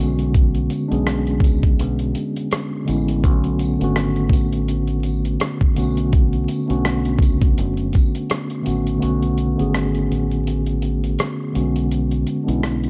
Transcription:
0.00 0.67 B1 medium
0.00 0.68 D3 medium
0.00 0.69 G#3 medium
0.00 0.70 B3 medium
0.00 0.70 C#4 medium
0.00 0.71 F#4 medium
0.00 tambourine medium
0.19 closed hi-hat soft
0.34 kick loud
0.34 closed hi-hat medium
0.55 closed hi-hat soft
0.70 closed hi-hat medium
0.70 tambourine soft
0.88 1.41 B1 medium
0.88 1.89 G#3 medium
0.88 1.90 B3 medium
0.88 1.91 C#4 medium
0.88 1.89 D4 medium
0.88 closed hi-hat soft
0.93 1.91 G#4 medium
1.07 cross-stick loud
1.07 closed hi-hat medium
1.27 closed hi-hat soft
1.40 1.76 C#2 medium
1.40 kick medium
1.40 closed hi-hat medium
1.40 tambourine medium
1.63 kick loud
1.63 closed hi-hat soft
1.79 2.14 B1 loud
1.79 closed hi-hat medium
1.99 closed hi-hat soft
2.15 closed hi-hat medium
2.15 tambourine soft
2.36 closed hi-hat soft
2.51 cross-stick loud
2.51 closed hi-hat medium
2.85 3.24 A1 medium
2.85 3.13 D3 medium
2.85 3.13 G#3 medium
2.85 3.14 B3 medium
2.85 3.14 C#4 medium
2.85 closed hi-hat medium
2.90 3.15 E4 medium
2.90 tambourine medium
3.08 closed hi-hat soft
3.22 3.76 B1 loud
3.22 3.61 D3 medium
3.22 3.61 A3 medium
3.22 3.62 B3 medium
3.22 3.63 C#4 medium
3.22 kick loud
3.22 closed hi-hat medium
3.27 3.63 F#4 loud
3.44 closed hi-hat soft
3.59 closed hi-hat medium
3.59 tambourine soft
3.79 4.29 G#1 medium
3.79 4.79 D3 medium
3.79 4.79 A3 medium
3.79 4.80 B3 medium
3.79 4.81 C#4 medium
3.79 closed hi-hat soft
3.84 4.81 F#4 loud
3.96 cross-stick loud
3.96 closed hi-hat medium
4.16 closed hi-hat soft
4.29 5.35 A1 loud
4.29 kick medium
4.29 closed hi-hat medium
4.29 tambourine medium
4.52 closed hi-hat soft
4.68 closed hi-hat medium
4.87 closed hi-hat soft
5.03 closed hi-hat medium
5.03 tambourine soft
5.25 closed hi-hat soft
5.40 cross-stick loud
5.40 closed hi-hat medium
5.61 kick medium
5.75 6.45 B1 medium
5.75 6.48 D3 medium
5.75 6.49 A3 medium
5.75 6.49 B3 medium
5.75 6.50 C#4 medium
5.75 closed hi-hat medium
5.79 6.50 F#4 medium
5.79 tambourine medium
5.97 closed hi-hat medium
6.13 kick loud
6.13 closed hi-hat medium
6.33 closed hi-hat soft
6.48 closed hi-hat medium
6.48 tambourine soft
6.66 7.68 A3 medium
6.66 7.68 B3 medium
6.66 7.69 C#4 medium
6.66 7.67 D4 medium
6.66 closed hi-hat soft
6.70 7.19 B1 medium
6.70 7.69 F#4 medium
6.85 cross-stick loud
6.85 closed hi-hat medium
7.05 closed hi-hat soft
7.19 7.54 C#2 loud
7.19 kick loud
7.19 closed hi-hat medium
7.19 tambourine medium
7.42 kick loud
7.42 closed hi-hat soft
7.58 7.92 F#1 medium
7.58 closed hi-hat medium
7.77 closed hi-hat soft
7.93 kick medium
7.93 closed hi-hat medium
7.93 tambourine medium
8.15 closed hi-hat soft
8.30 cross-stick loud
8.30 closed hi-hat medium
8.50 closed hi-hat soft
8.62 8.90 D3 medium
8.62 8.91 A3 medium
8.62 8.91 B3 medium
8.62 8.92 C#4 medium
8.62 closed hi-hat medium
8.67 9.00 A1 medium
8.67 8.93 F#4 medium
8.67 tambourine medium
8.87 closed hi-hat soft
8.98 9.38 D3 medium
8.98 9.38 A3 medium
8.98 9.39 B3 medium
8.98 9.39 C#4 medium
9.02 9.55 B1 medium
9.02 9.40 F#4 medium
9.02 closed hi-hat medium
9.22 closed hi-hat soft
9.38 closed hi-hat medium
9.56 10.08 G#1 medium
9.56 10.56 D3 medium
9.56 10.57 A3 medium
9.56 10.57 B3 medium
9.56 10.58 C#4 medium
9.56 closed hi-hat soft
9.60 10.59 G#4 medium
9.74 cross-stick loud
9.74 closed hi-hat medium
9.95 closed hi-hat soft
10.12 11.15 A1 medium
10.12 closed hi-hat medium
10.31 closed hi-hat soft
10.47 closed hi-hat medium
10.66 closed hi-hat soft
10.82 closed hi-hat medium
11.04 closed hi-hat soft
11.19 cross-stick loud
11.19 closed hi-hat medium
11.52 12.24 B1 medium
11.52 12.26 D3 medium
11.52 12.27 G#3 medium
11.52 12.27 B3 medium
11.52 12.28 C#4 medium
11.52 closed hi-hat medium
11.57 12.28 F#4 medium
11.76 closed hi-hat soft
11.91 closed hi-hat medium
12.11 closed hi-hat soft
12.27 closed hi-hat medium
12.44 12.90 G#3 medium
12.44 12.90 B3 medium
12.44 12.90 C#4 medium
12.44 12.90 D4 medium
12.48 12.90 B1 loud
12.48 12.90 E4 medium
12.48 closed hi-hat soft
12.63 cross-stick medium
12.63 closed hi-hat medium
12.84 closed hi-hat soft

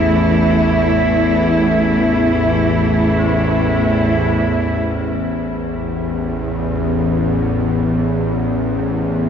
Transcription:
0.00 4.80 A1 medium
0.00 4.79 E2 medium
0.00 4.82 E3 medium
0.00 4.81 A3 medium
0.00 4.82 E4 medium
0.00 1.47 G#4 medium
3.19 9.29 C4 medium
4.81 9.29 A1 medium
4.81 9.29 E2 medium
4.81 9.29 E4 soft

